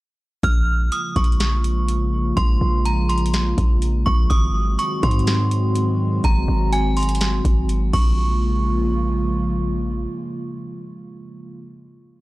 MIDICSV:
0, 0, Header, 1, 5, 480
1, 0, Start_track
1, 0, Key_signature, -5, "minor"
1, 0, Tempo, 483871
1, 431, Time_signature, 4, 2, 24, 8
1, 12112, End_track
2, 0, Start_track
2, 0, Title_t, "Synth bell"
2, 0, Program_c, 0, 98
2, 436, Note_on_c, 0, 89, 102
2, 885, Note_off_c, 0, 89, 0
2, 915, Note_on_c, 0, 87, 87
2, 1141, Note_off_c, 0, 87, 0
2, 1151, Note_on_c, 0, 85, 70
2, 2311, Note_off_c, 0, 85, 0
2, 2348, Note_on_c, 0, 84, 96
2, 2801, Note_off_c, 0, 84, 0
2, 2833, Note_on_c, 0, 82, 84
2, 3060, Note_off_c, 0, 82, 0
2, 3067, Note_on_c, 0, 84, 70
2, 3297, Note_off_c, 0, 84, 0
2, 4026, Note_on_c, 0, 85, 92
2, 4256, Note_off_c, 0, 85, 0
2, 4264, Note_on_c, 0, 87, 97
2, 4718, Note_off_c, 0, 87, 0
2, 4749, Note_on_c, 0, 85, 87
2, 4978, Note_off_c, 0, 85, 0
2, 4990, Note_on_c, 0, 84, 83
2, 6151, Note_off_c, 0, 84, 0
2, 6196, Note_on_c, 0, 82, 102
2, 6645, Note_off_c, 0, 82, 0
2, 6672, Note_on_c, 0, 80, 94
2, 6899, Note_off_c, 0, 80, 0
2, 6912, Note_on_c, 0, 84, 78
2, 7140, Note_off_c, 0, 84, 0
2, 7870, Note_on_c, 0, 85, 82
2, 9511, Note_off_c, 0, 85, 0
2, 12112, End_track
3, 0, Start_track
3, 0, Title_t, "Analog synth pad"
3, 0, Program_c, 1, 89
3, 431, Note_on_c, 1, 49, 75
3, 431, Note_on_c, 1, 53, 73
3, 431, Note_on_c, 1, 56, 71
3, 431, Note_on_c, 1, 58, 72
3, 431, Note_on_c, 1, 65, 87
3, 4232, Note_off_c, 1, 56, 0
3, 4232, Note_off_c, 1, 58, 0
3, 4232, Note_off_c, 1, 65, 0
3, 4233, Note_off_c, 1, 49, 0
3, 4233, Note_off_c, 1, 53, 0
3, 4270, Note_on_c, 1, 66, 88
3, 4271, Note_on_c, 1, 51, 77
3, 4271, Note_on_c, 1, 54, 72
3, 4271, Note_on_c, 1, 56, 74
3, 4271, Note_on_c, 1, 60, 72
3, 7835, Note_off_c, 1, 51, 0
3, 7835, Note_off_c, 1, 54, 0
3, 7835, Note_off_c, 1, 56, 0
3, 7835, Note_off_c, 1, 60, 0
3, 7835, Note_off_c, 1, 66, 0
3, 7870, Note_on_c, 1, 65, 82
3, 7871, Note_on_c, 1, 49, 80
3, 7871, Note_on_c, 1, 53, 71
3, 7871, Note_on_c, 1, 56, 70
3, 7871, Note_on_c, 1, 58, 73
3, 11519, Note_off_c, 1, 49, 0
3, 11519, Note_off_c, 1, 53, 0
3, 11519, Note_off_c, 1, 56, 0
3, 11519, Note_off_c, 1, 58, 0
3, 11519, Note_off_c, 1, 65, 0
3, 12112, End_track
4, 0, Start_track
4, 0, Title_t, "808-style bass"
4, 0, Program_c, 2, 38
4, 431, Note_on_c, 2, 34, 114
4, 892, Note_off_c, 2, 34, 0
4, 1151, Note_on_c, 2, 34, 107
4, 2311, Note_off_c, 2, 34, 0
4, 2351, Note_on_c, 2, 34, 118
4, 2581, Note_off_c, 2, 34, 0
4, 2591, Note_on_c, 2, 34, 100
4, 3513, Note_off_c, 2, 34, 0
4, 3549, Note_on_c, 2, 34, 105
4, 4011, Note_off_c, 2, 34, 0
4, 4033, Note_on_c, 2, 34, 101
4, 4262, Note_off_c, 2, 34, 0
4, 4271, Note_on_c, 2, 32, 115
4, 4732, Note_off_c, 2, 32, 0
4, 4991, Note_on_c, 2, 44, 107
4, 6151, Note_off_c, 2, 44, 0
4, 6191, Note_on_c, 2, 32, 117
4, 6421, Note_off_c, 2, 32, 0
4, 6431, Note_on_c, 2, 32, 100
4, 7353, Note_off_c, 2, 32, 0
4, 7389, Note_on_c, 2, 32, 107
4, 7851, Note_off_c, 2, 32, 0
4, 7871, Note_on_c, 2, 34, 101
4, 9991, Note_off_c, 2, 34, 0
4, 12112, End_track
5, 0, Start_track
5, 0, Title_t, "Drums"
5, 431, Note_on_c, 9, 36, 99
5, 431, Note_on_c, 9, 42, 68
5, 530, Note_off_c, 9, 36, 0
5, 530, Note_off_c, 9, 42, 0
5, 912, Note_on_c, 9, 42, 76
5, 1011, Note_off_c, 9, 42, 0
5, 1151, Note_on_c, 9, 36, 90
5, 1151, Note_on_c, 9, 42, 50
5, 1231, Note_off_c, 9, 42, 0
5, 1231, Note_on_c, 9, 42, 51
5, 1250, Note_off_c, 9, 36, 0
5, 1311, Note_off_c, 9, 42, 0
5, 1311, Note_on_c, 9, 42, 49
5, 1390, Note_off_c, 9, 42, 0
5, 1390, Note_on_c, 9, 42, 80
5, 1393, Note_on_c, 9, 38, 116
5, 1489, Note_off_c, 9, 42, 0
5, 1492, Note_off_c, 9, 38, 0
5, 1630, Note_on_c, 9, 42, 74
5, 1729, Note_off_c, 9, 42, 0
5, 1870, Note_on_c, 9, 42, 79
5, 1969, Note_off_c, 9, 42, 0
5, 2351, Note_on_c, 9, 36, 100
5, 2351, Note_on_c, 9, 42, 65
5, 2450, Note_off_c, 9, 36, 0
5, 2450, Note_off_c, 9, 42, 0
5, 2832, Note_on_c, 9, 42, 77
5, 2931, Note_off_c, 9, 42, 0
5, 3071, Note_on_c, 9, 42, 51
5, 3151, Note_off_c, 9, 42, 0
5, 3151, Note_on_c, 9, 42, 49
5, 3231, Note_off_c, 9, 42, 0
5, 3231, Note_on_c, 9, 42, 53
5, 3310, Note_off_c, 9, 42, 0
5, 3310, Note_on_c, 9, 42, 80
5, 3313, Note_on_c, 9, 38, 119
5, 3409, Note_off_c, 9, 42, 0
5, 3412, Note_off_c, 9, 38, 0
5, 3549, Note_on_c, 9, 36, 102
5, 3550, Note_on_c, 9, 42, 73
5, 3648, Note_off_c, 9, 36, 0
5, 3649, Note_off_c, 9, 42, 0
5, 3789, Note_on_c, 9, 42, 81
5, 3889, Note_off_c, 9, 42, 0
5, 4033, Note_on_c, 9, 36, 94
5, 4132, Note_off_c, 9, 36, 0
5, 4270, Note_on_c, 9, 42, 66
5, 4271, Note_on_c, 9, 36, 101
5, 4369, Note_off_c, 9, 42, 0
5, 4370, Note_off_c, 9, 36, 0
5, 4752, Note_on_c, 9, 42, 77
5, 4851, Note_off_c, 9, 42, 0
5, 4990, Note_on_c, 9, 36, 92
5, 4991, Note_on_c, 9, 42, 52
5, 5071, Note_off_c, 9, 42, 0
5, 5071, Note_on_c, 9, 42, 50
5, 5090, Note_off_c, 9, 36, 0
5, 5151, Note_off_c, 9, 42, 0
5, 5151, Note_on_c, 9, 42, 53
5, 5229, Note_off_c, 9, 42, 0
5, 5229, Note_on_c, 9, 42, 81
5, 5233, Note_on_c, 9, 38, 120
5, 5329, Note_off_c, 9, 42, 0
5, 5332, Note_off_c, 9, 38, 0
5, 5470, Note_on_c, 9, 42, 74
5, 5569, Note_off_c, 9, 42, 0
5, 5709, Note_on_c, 9, 42, 80
5, 5808, Note_off_c, 9, 42, 0
5, 6190, Note_on_c, 9, 42, 67
5, 6191, Note_on_c, 9, 36, 99
5, 6289, Note_off_c, 9, 42, 0
5, 6290, Note_off_c, 9, 36, 0
5, 6672, Note_on_c, 9, 42, 78
5, 6771, Note_off_c, 9, 42, 0
5, 6911, Note_on_c, 9, 42, 51
5, 6912, Note_on_c, 9, 46, 46
5, 6971, Note_off_c, 9, 42, 0
5, 6971, Note_on_c, 9, 42, 50
5, 7011, Note_off_c, 9, 46, 0
5, 7031, Note_off_c, 9, 42, 0
5, 7031, Note_on_c, 9, 42, 52
5, 7091, Note_off_c, 9, 42, 0
5, 7091, Note_on_c, 9, 42, 50
5, 7150, Note_off_c, 9, 42, 0
5, 7150, Note_on_c, 9, 42, 84
5, 7154, Note_on_c, 9, 38, 116
5, 7249, Note_off_c, 9, 42, 0
5, 7253, Note_off_c, 9, 38, 0
5, 7389, Note_on_c, 9, 36, 96
5, 7391, Note_on_c, 9, 42, 74
5, 7488, Note_off_c, 9, 36, 0
5, 7490, Note_off_c, 9, 42, 0
5, 7630, Note_on_c, 9, 42, 79
5, 7729, Note_off_c, 9, 42, 0
5, 7871, Note_on_c, 9, 36, 106
5, 7871, Note_on_c, 9, 49, 91
5, 7970, Note_off_c, 9, 36, 0
5, 7970, Note_off_c, 9, 49, 0
5, 12112, End_track
0, 0, End_of_file